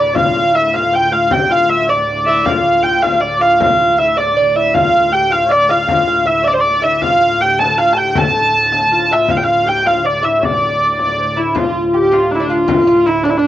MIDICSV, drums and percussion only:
0, 0, Header, 1, 2, 480
1, 0, Start_track
1, 0, Key_signature, -1, "minor"
1, 0, Tempo, 381437
1, 204, Time_signature, 6, 3, 24, 8
1, 8363, Tempo, 377596
1, 17042, End_track
2, 0, Start_track
2, 0, Title_t, "Frame drum"
2, 202, Note_on_c, 9, 64, 90
2, 328, Note_off_c, 9, 64, 0
2, 932, Note_on_c, 9, 64, 69
2, 1058, Note_off_c, 9, 64, 0
2, 1650, Note_on_c, 9, 64, 91
2, 1776, Note_off_c, 9, 64, 0
2, 1896, Note_on_c, 9, 64, 25
2, 2022, Note_off_c, 9, 64, 0
2, 2377, Note_on_c, 9, 64, 57
2, 2503, Note_off_c, 9, 64, 0
2, 2858, Note_on_c, 9, 64, 25
2, 2983, Note_off_c, 9, 64, 0
2, 3094, Note_on_c, 9, 64, 91
2, 3220, Note_off_c, 9, 64, 0
2, 3339, Note_on_c, 9, 64, 23
2, 3465, Note_off_c, 9, 64, 0
2, 3585, Note_on_c, 9, 64, 31
2, 3711, Note_off_c, 9, 64, 0
2, 3828, Note_on_c, 9, 64, 79
2, 3954, Note_off_c, 9, 64, 0
2, 4537, Note_on_c, 9, 64, 99
2, 4662, Note_off_c, 9, 64, 0
2, 4787, Note_on_c, 9, 64, 26
2, 4913, Note_off_c, 9, 64, 0
2, 5030, Note_on_c, 9, 64, 28
2, 5156, Note_off_c, 9, 64, 0
2, 5268, Note_on_c, 9, 64, 66
2, 5394, Note_off_c, 9, 64, 0
2, 5976, Note_on_c, 9, 64, 86
2, 6102, Note_off_c, 9, 64, 0
2, 6218, Note_on_c, 9, 64, 24
2, 6344, Note_off_c, 9, 64, 0
2, 6462, Note_on_c, 9, 64, 25
2, 6588, Note_off_c, 9, 64, 0
2, 6697, Note_on_c, 9, 64, 55
2, 6823, Note_off_c, 9, 64, 0
2, 7404, Note_on_c, 9, 64, 84
2, 7530, Note_off_c, 9, 64, 0
2, 7651, Note_on_c, 9, 64, 24
2, 7777, Note_off_c, 9, 64, 0
2, 8115, Note_on_c, 9, 64, 53
2, 8241, Note_off_c, 9, 64, 0
2, 8838, Note_on_c, 9, 64, 75
2, 8965, Note_off_c, 9, 64, 0
2, 9087, Note_on_c, 9, 64, 21
2, 9214, Note_off_c, 9, 64, 0
2, 9321, Note_on_c, 9, 64, 27
2, 9448, Note_off_c, 9, 64, 0
2, 9565, Note_on_c, 9, 64, 74
2, 9692, Note_off_c, 9, 64, 0
2, 10281, Note_on_c, 9, 64, 100
2, 10408, Note_off_c, 9, 64, 0
2, 10526, Note_on_c, 9, 64, 23
2, 10653, Note_off_c, 9, 64, 0
2, 10763, Note_on_c, 9, 64, 29
2, 10890, Note_off_c, 9, 64, 0
2, 10999, Note_on_c, 9, 64, 73
2, 11126, Note_off_c, 9, 64, 0
2, 11719, Note_on_c, 9, 64, 86
2, 11846, Note_off_c, 9, 64, 0
2, 11973, Note_on_c, 9, 64, 26
2, 12100, Note_off_c, 9, 64, 0
2, 12211, Note_on_c, 9, 64, 26
2, 12338, Note_off_c, 9, 64, 0
2, 12444, Note_on_c, 9, 64, 66
2, 12571, Note_off_c, 9, 64, 0
2, 13174, Note_on_c, 9, 64, 87
2, 13301, Note_off_c, 9, 64, 0
2, 13416, Note_on_c, 9, 64, 24
2, 13543, Note_off_c, 9, 64, 0
2, 13887, Note_on_c, 9, 64, 65
2, 14014, Note_off_c, 9, 64, 0
2, 14129, Note_on_c, 9, 64, 23
2, 14256, Note_off_c, 9, 64, 0
2, 14375, Note_on_c, 9, 64, 26
2, 14502, Note_off_c, 9, 64, 0
2, 14605, Note_on_c, 9, 64, 83
2, 14732, Note_off_c, 9, 64, 0
2, 14848, Note_on_c, 9, 64, 24
2, 14975, Note_off_c, 9, 64, 0
2, 15087, Note_on_c, 9, 64, 26
2, 15214, Note_off_c, 9, 64, 0
2, 15317, Note_on_c, 9, 64, 69
2, 15444, Note_off_c, 9, 64, 0
2, 16042, Note_on_c, 9, 64, 92
2, 16169, Note_off_c, 9, 64, 0
2, 16278, Note_on_c, 9, 64, 25
2, 16405, Note_off_c, 9, 64, 0
2, 16524, Note_on_c, 9, 64, 29
2, 16651, Note_off_c, 9, 64, 0
2, 16761, Note_on_c, 9, 64, 76
2, 16888, Note_off_c, 9, 64, 0
2, 17042, End_track
0, 0, End_of_file